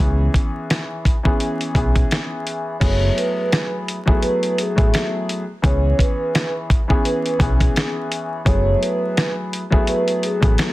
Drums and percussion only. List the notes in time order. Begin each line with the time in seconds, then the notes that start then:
0.00 closed hi-hat
0.34 kick, closed hi-hat
0.70 snare, closed hi-hat
1.05 kick, closed hi-hat
1.25 kick
1.40 closed hi-hat
1.61 closed hi-hat
1.75 kick, closed hi-hat
1.96 kick, closed hi-hat
2.11 snare, closed hi-hat
2.47 closed hi-hat
2.81 kick, closed hi-hat, crash
3.18 closed hi-hat
3.52 snare, closed hi-hat
3.88 closed hi-hat
4.08 kick
4.22 closed hi-hat
4.43 closed hi-hat
4.58 closed hi-hat
4.78 kick, closed hi-hat
4.94 snare, closed hi-hat
5.29 closed hi-hat
5.64 kick, closed hi-hat
5.99 kick, closed hi-hat
6.35 snare, closed hi-hat
6.70 kick, closed hi-hat
6.90 kick
7.05 closed hi-hat
7.26 closed hi-hat
7.40 kick, closed hi-hat
7.60 kick, closed hi-hat
7.76 snare, closed hi-hat
8.12 closed hi-hat
8.46 kick, closed hi-hat
8.83 closed hi-hat
9.17 snare, closed hi-hat
9.53 closed hi-hat
9.72 kick
9.87 closed hi-hat
10.08 closed hi-hat
10.23 closed hi-hat
10.43 kick, closed hi-hat
10.58 snare, closed hi-hat